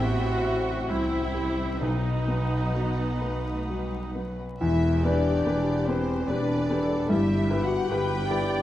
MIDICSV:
0, 0, Header, 1, 11, 480
1, 0, Start_track
1, 0, Key_signature, 1, "minor"
1, 0, Tempo, 895522
1, 971, Time_signature, 3, 2, 24, 8
1, 972, Tempo, 933126
1, 2412, Tempo, 831025
1, 3852, Tempo, 802139
1, 4758, End_track
2, 0, Start_track
2, 0, Title_t, "Violin section"
2, 0, Program_c, 0, 48
2, 0, Note_on_c, 0, 79, 60
2, 469, Note_off_c, 0, 79, 0
2, 495, Note_on_c, 0, 79, 48
2, 967, Note_off_c, 0, 79, 0
2, 969, Note_on_c, 0, 78, 46
2, 2305, Note_off_c, 0, 78, 0
2, 2416, Note_on_c, 0, 76, 67
2, 2644, Note_off_c, 0, 76, 0
2, 2657, Note_on_c, 0, 74, 57
2, 3127, Note_off_c, 0, 74, 0
2, 3135, Note_on_c, 0, 72, 53
2, 3373, Note_on_c, 0, 74, 66
2, 3376, Note_off_c, 0, 72, 0
2, 3850, Note_off_c, 0, 74, 0
2, 3850, Note_on_c, 0, 76, 67
2, 4164, Note_off_c, 0, 76, 0
2, 4170, Note_on_c, 0, 78, 60
2, 4332, Note_off_c, 0, 78, 0
2, 4332, Note_on_c, 0, 79, 65
2, 4758, Note_off_c, 0, 79, 0
2, 4758, End_track
3, 0, Start_track
3, 0, Title_t, "Violin section"
3, 0, Program_c, 1, 48
3, 0, Note_on_c, 1, 72, 50
3, 0, Note_on_c, 1, 76, 56
3, 461, Note_off_c, 1, 72, 0
3, 461, Note_off_c, 1, 76, 0
3, 480, Note_on_c, 1, 72, 42
3, 482, Note_on_c, 1, 76, 42
3, 960, Note_off_c, 1, 72, 0
3, 961, Note_off_c, 1, 76, 0
3, 972, Note_on_c, 1, 71, 37
3, 975, Note_off_c, 1, 71, 0
3, 975, Note_on_c, 1, 71, 44
3, 2308, Note_off_c, 1, 71, 0
3, 2412, Note_on_c, 1, 76, 56
3, 2641, Note_off_c, 1, 76, 0
3, 2660, Note_on_c, 1, 74, 56
3, 3137, Note_on_c, 1, 72, 65
3, 3138, Note_off_c, 1, 74, 0
3, 3377, Note_off_c, 1, 72, 0
3, 3378, Note_on_c, 1, 74, 59
3, 3852, Note_on_c, 1, 76, 59
3, 3853, Note_off_c, 1, 74, 0
3, 4166, Note_off_c, 1, 76, 0
3, 4170, Note_on_c, 1, 78, 63
3, 4325, Note_on_c, 1, 79, 74
3, 4332, Note_off_c, 1, 78, 0
3, 4758, Note_off_c, 1, 79, 0
3, 4758, End_track
4, 0, Start_track
4, 0, Title_t, "Grand piano"
4, 0, Program_c, 2, 0
4, 0, Control_c, 2, 64, 127
4, 0, Note_on_c, 2, 33, 60
4, 0, Note_on_c, 2, 64, 49
4, 5, Note_on_c, 2, 67, 44
4, 147, Note_off_c, 2, 64, 0
4, 237, Note_on_c, 2, 76, 48
4, 385, Note_off_c, 2, 67, 0
4, 477, Note_on_c, 2, 72, 42
4, 623, Note_off_c, 2, 76, 0
4, 718, Note_on_c, 2, 67, 40
4, 868, Note_off_c, 2, 72, 0
4, 946, Note_off_c, 2, 33, 0
4, 968, Note_off_c, 2, 67, 0
4, 968, Note_on_c, 2, 35, 46
4, 982, Control_c, 2, 64, 0
4, 1092, Control_c, 2, 64, 127
4, 1211, Note_on_c, 2, 59, 40
4, 1452, Note_on_c, 2, 66, 40
4, 1598, Note_off_c, 2, 59, 0
4, 1693, Note_on_c, 2, 71, 36
4, 1840, Note_off_c, 2, 66, 0
4, 1937, Note_on_c, 2, 66, 32
4, 2079, Note_off_c, 2, 71, 0
4, 2175, Note_on_c, 2, 59, 35
4, 2321, Note_off_c, 2, 66, 0
4, 2390, Note_off_c, 2, 35, 0
4, 2411, Note_off_c, 2, 59, 0
4, 2411, Note_on_c, 2, 40, 58
4, 2422, Control_c, 2, 64, 0
4, 2534, Control_c, 2, 64, 127
4, 2651, Note_off_c, 2, 40, 0
4, 2662, Note_on_c, 2, 59, 46
4, 2664, Note_on_c, 2, 67, 49
4, 2670, Note_on_c, 2, 71, 51
4, 2878, Note_off_c, 2, 59, 0
4, 2879, Note_off_c, 2, 67, 0
4, 2882, Note_off_c, 2, 71, 0
4, 2902, Note_on_c, 2, 59, 45
4, 2905, Note_on_c, 2, 67, 44
4, 2905, Note_on_c, 2, 71, 53
4, 3116, Note_off_c, 2, 59, 0
4, 3117, Note_off_c, 2, 67, 0
4, 3117, Note_off_c, 2, 71, 0
4, 3145, Note_on_c, 2, 59, 46
4, 3147, Note_on_c, 2, 67, 44
4, 3149, Note_on_c, 2, 71, 51
4, 3359, Note_off_c, 2, 59, 0
4, 3359, Note_off_c, 2, 67, 0
4, 3360, Note_off_c, 2, 71, 0
4, 3382, Note_on_c, 2, 59, 41
4, 3383, Note_on_c, 2, 67, 44
4, 3384, Note_on_c, 2, 71, 44
4, 3597, Note_off_c, 2, 59, 0
4, 3598, Note_off_c, 2, 67, 0
4, 3598, Note_off_c, 2, 71, 0
4, 3619, Note_on_c, 2, 59, 44
4, 3621, Note_on_c, 2, 67, 46
4, 3621, Note_on_c, 2, 71, 48
4, 3830, Note_off_c, 2, 59, 0
4, 3831, Note_off_c, 2, 67, 0
4, 3831, Note_off_c, 2, 71, 0
4, 3844, Note_on_c, 2, 43, 63
4, 3864, Control_c, 2, 64, 0
4, 3972, Control_c, 2, 64, 127
4, 4080, Note_off_c, 2, 43, 0
4, 4089, Note_on_c, 2, 67, 47
4, 4090, Note_on_c, 2, 71, 58
4, 4091, Note_on_c, 2, 64, 51
4, 4308, Note_off_c, 2, 67, 0
4, 4308, Note_off_c, 2, 71, 0
4, 4309, Note_off_c, 2, 64, 0
4, 4331, Note_on_c, 2, 64, 45
4, 4333, Note_on_c, 2, 67, 52
4, 4336, Note_on_c, 2, 71, 54
4, 4549, Note_off_c, 2, 64, 0
4, 4550, Note_off_c, 2, 67, 0
4, 4552, Note_off_c, 2, 71, 0
4, 4565, Note_on_c, 2, 64, 49
4, 4570, Note_on_c, 2, 67, 49
4, 4571, Note_on_c, 2, 71, 49
4, 4758, Note_off_c, 2, 64, 0
4, 4758, Note_off_c, 2, 67, 0
4, 4758, Note_off_c, 2, 71, 0
4, 4758, End_track
5, 0, Start_track
5, 0, Title_t, "Viola section"
5, 0, Program_c, 3, 48
5, 11, Note_on_c, 3, 66, 72
5, 483, Note_on_c, 3, 64, 68
5, 484, Note_off_c, 3, 66, 0
5, 971, Note_off_c, 3, 64, 0
5, 973, Note_on_c, 3, 63, 62
5, 2158, Note_off_c, 3, 63, 0
5, 2418, Note_on_c, 3, 67, 63
5, 3358, Note_off_c, 3, 67, 0
5, 3378, Note_on_c, 3, 71, 56
5, 3613, Note_off_c, 3, 71, 0
5, 3616, Note_on_c, 3, 69, 59
5, 3852, Note_off_c, 3, 69, 0
5, 3854, Note_on_c, 3, 67, 56
5, 4331, Note_on_c, 3, 71, 68
5, 4334, Note_off_c, 3, 67, 0
5, 4571, Note_on_c, 3, 74, 68
5, 4573, Note_off_c, 3, 71, 0
5, 4758, Note_off_c, 3, 74, 0
5, 4758, End_track
6, 0, Start_track
6, 0, Title_t, "Clarinet"
6, 0, Program_c, 4, 71
6, 13, Note_on_c, 4, 66, 57
6, 483, Note_on_c, 4, 64, 49
6, 491, Note_off_c, 4, 66, 0
6, 964, Note_off_c, 4, 64, 0
6, 968, Note_on_c, 4, 63, 55
6, 2156, Note_off_c, 4, 63, 0
6, 4758, End_track
7, 0, Start_track
7, 0, Title_t, "Cor anglais"
7, 0, Program_c, 5, 69
7, 13, Note_on_c, 5, 66, 55
7, 487, Note_on_c, 5, 64, 47
7, 495, Note_off_c, 5, 66, 0
7, 969, Note_off_c, 5, 64, 0
7, 973, Note_on_c, 5, 63, 51
7, 2158, Note_off_c, 5, 63, 0
7, 4758, End_track
8, 0, Start_track
8, 0, Title_t, "French horn section"
8, 0, Program_c, 6, 60
8, 0, Note_on_c, 6, 60, 59
8, 0, Note_on_c, 6, 64, 56
8, 949, Note_off_c, 6, 64, 0
8, 968, Note_off_c, 6, 60, 0
8, 974, Note_on_c, 6, 66, 43
8, 975, Note_on_c, 6, 59, 40
8, 2221, Note_off_c, 6, 59, 0
8, 2241, Note_off_c, 6, 66, 0
8, 2411, Note_on_c, 6, 64, 73
8, 2641, Note_off_c, 6, 64, 0
8, 2658, Note_on_c, 6, 62, 73
8, 3137, Note_off_c, 6, 62, 0
8, 3141, Note_on_c, 6, 60, 70
8, 3379, Note_off_c, 6, 60, 0
8, 3380, Note_on_c, 6, 62, 75
8, 3846, Note_on_c, 6, 64, 80
8, 3854, Note_off_c, 6, 62, 0
8, 4169, Note_off_c, 6, 64, 0
8, 4172, Note_on_c, 6, 66, 77
8, 4329, Note_on_c, 6, 67, 69
8, 4333, Note_off_c, 6, 66, 0
8, 4758, Note_off_c, 6, 67, 0
8, 4758, End_track
9, 0, Start_track
9, 0, Title_t, "Cello section"
9, 0, Program_c, 7, 48
9, 10, Note_on_c, 7, 59, 54
9, 245, Note_off_c, 7, 59, 0
9, 246, Note_on_c, 7, 57, 46
9, 483, Note_on_c, 7, 55, 55
9, 484, Note_off_c, 7, 57, 0
9, 971, Note_off_c, 7, 55, 0
9, 971, Note_on_c, 7, 54, 46
9, 1397, Note_off_c, 7, 54, 0
9, 1456, Note_on_c, 7, 59, 43
9, 1680, Note_off_c, 7, 59, 0
9, 1696, Note_on_c, 7, 57, 43
9, 1934, Note_on_c, 7, 55, 48
9, 1936, Note_off_c, 7, 57, 0
9, 2174, Note_on_c, 7, 54, 38
9, 2177, Note_off_c, 7, 55, 0
9, 2409, Note_on_c, 7, 40, 69
9, 2410, Note_off_c, 7, 54, 0
9, 2841, Note_off_c, 7, 40, 0
9, 2896, Note_on_c, 7, 40, 50
9, 3319, Note_off_c, 7, 40, 0
9, 3374, Note_on_c, 7, 40, 65
9, 3796, Note_off_c, 7, 40, 0
9, 3849, Note_on_c, 7, 43, 72
9, 4274, Note_off_c, 7, 43, 0
9, 4330, Note_on_c, 7, 43, 57
9, 4754, Note_off_c, 7, 43, 0
9, 4758, End_track
10, 0, Start_track
10, 0, Title_t, "Double bass section"
10, 0, Program_c, 8, 48
10, 0, Note_on_c, 8, 33, 56
10, 461, Note_off_c, 8, 33, 0
10, 487, Note_on_c, 8, 36, 43
10, 963, Note_off_c, 8, 36, 0
10, 973, Note_on_c, 8, 35, 48
10, 2306, Note_off_c, 8, 35, 0
10, 2413, Note_on_c, 8, 28, 64
10, 2843, Note_off_c, 8, 28, 0
10, 2901, Note_on_c, 8, 28, 58
10, 3322, Note_off_c, 8, 28, 0
10, 3377, Note_on_c, 8, 28, 64
10, 3797, Note_off_c, 8, 28, 0
10, 3849, Note_on_c, 8, 31, 71
10, 4274, Note_off_c, 8, 31, 0
10, 4334, Note_on_c, 8, 31, 59
10, 4756, Note_off_c, 8, 31, 0
10, 4758, End_track
11, 0, Start_track
11, 0, Title_t, "Tuba"
11, 0, Program_c, 10, 58
11, 2412, Note_on_c, 10, 28, 57
11, 2842, Note_off_c, 10, 28, 0
11, 2898, Note_on_c, 10, 28, 56
11, 3320, Note_off_c, 10, 28, 0
11, 3373, Note_on_c, 10, 28, 51
11, 3795, Note_off_c, 10, 28, 0
11, 3852, Note_on_c, 10, 31, 61
11, 4276, Note_off_c, 10, 31, 0
11, 4330, Note_on_c, 10, 31, 56
11, 4755, Note_off_c, 10, 31, 0
11, 4758, End_track
0, 0, End_of_file